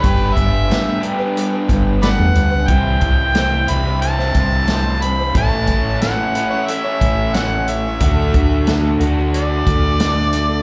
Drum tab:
HH |x-x-x-x-x-x-x-x-|x-x-x-x-x-x-x-x-|x-x-x-x-x-x-x-x-|x-x-x-x-x-x-x-x-|
SD |----o-------o---|----o----o--o---|----o-------o---|----o-------o---|
BD |o-o-------o-----|o-o-------o-----|o-o-------o-----|o-o-------o-----|